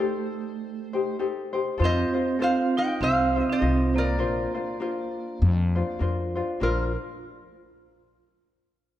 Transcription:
Already playing: vibraphone A3, resonator guitar played with a steel bar A4 C5
0.00 ukulele D#4 G4 A4 C5
0.93 ukulele D#4 G4 C5
1.19 ukulele D#4 G4 A4 C5
1.53 ukulele D#4 G4 C5
1.78 upright bass F2, ukulele D#4 F4 A4 C5
1.82 vibraphone C4, resonator guitar played with a steel bar C5 D#5
2.14 ukulele D#4 F4 C5
2.39 vibraphone C4, ukulele D#4 F4 A4 C5, resonator guitar played with a steel bar C5
2.44 resonator guitar played with a steel bar F5
2.77 vibraphone D#4, resonator guitar played with a steel bar D#5 G5
3.01 upright bass C2, vibraphone C4, resonator guitar played with a steel bar C5 F5
3.36 ukulele D#4 F4 C5
3.49 vibraphone C4, resonator guitar played with a steel bar C5 D#5
3.60 upright bass C2, ukulele D#4 F4 A4 C5
3.94 vibraphone A#3, ukulele D#4 F4 C5, resonator guitar played with a steel bar D5
3.99 resonator guitar played with a steel bar A#4
4.18 upright bass A#1, ukulele D4 F4 A#4 C5
4.54 ukulele D4 F4 C5
4.80 ukulele D4 F4 A#4 C5
5.42 upright bass F2
5.75 ukulele D4 F4 C5
5.99 upright bass F2, ukulele D4 F4 A#4 C5
6.35 ukulele D4 F4 C5
6.60 upright bass A#1, ukulele D4 F4 A#4 C5, vibraphone F4, resonator guitar played with a steel bar A#4

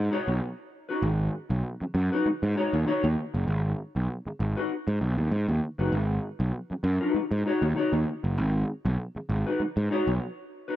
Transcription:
0.11 clean electric guitar D#4 F#4 C#5
0.28 picked electric bass B1
0.89 clean electric guitar D#4 F#4 B4
1.02 picked electric bass G#1
1.50 picked electric bass B1
1.81 muted picked electric bass stroke
1.95 picked electric bass F#2
2.12 clean electric guitar D#4 F#4 B4
2.26 muted picked electric bass stroke
2.43 picked electric bass G#2
2.56 clean electric guitar D#4 F#4 C#5
2.73 picked electric bass D#2
2.87 clean electric guitar D#4 F#4 C#5, muted picked electric bass stroke
3.04 picked electric bass D#2
3.34 picked electric bass F#1
3.48 picked electric bass G#1
3.96 picked electric bass B1
4.26 muted picked electric bass stroke
4.40 picked electric bass G#1
4.57 clean electric guitar D#4 F#4 B4
4.88 picked electric bass G#2
5.01 picked electric bass B1
5.18 picked electric bass D#2
5.31 picked electric bass G#2
5.48 picked electric bass D#2
5.79 picked electric bass F#1, clean electric guitar D#4 F#4 B4
5.92 picked electric bass G#1
6.40 picked electric bass B1
6.71 muted picked electric bass stroke
6.84 picked electric bass F#2
7.01 clean electric guitar D#4 F#4 B4
7.15 muted picked electric bass stroke
7.31 picked electric bass G#2
7.46 clean electric guitar D#4 F#4 C#5
7.62 picked electric bass D#2
7.76 clean electric guitar D#4 F#4 C#5, muted picked electric bass stroke
7.93 picked electric bass D#2
8.24 picked electric bass F#1
8.38 picked electric bass G#1
8.85 picked electric bass B1
9.16 muted picked electric bass stroke
9.29 picked electric bass G#1
9.46 clean electric guitar D#4 F#4 B4
9.60 muted picked electric bass stroke
9.77 picked electric bass G#2
9.91 clean electric guitar D#4 F#4 C#5
10.07 picked electric bass B1
10.68 clean electric guitar D#4 F#4 B4

